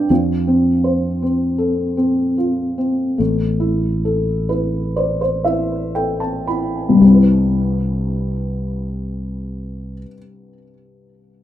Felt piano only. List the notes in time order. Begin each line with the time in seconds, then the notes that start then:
Already playing: D4 F4 B4 D5 G5
0.10 F3
0.47 C4
0.84 C5
1.22 C4
1.58 A4
1.97 C4
2.38 F4
2.78 C4
3.18 A3
3.60 E4
4.05 A4
4.49 E4 B4
4.96 C5 D5
5.21 C5
5.44 E4 E5
5.95 A4 G5
6.20 A5
6.47 E4 B5
6.89 C2
6.94 G2
7.00 G3
7.04 C4
7.10 E4
7.15 B4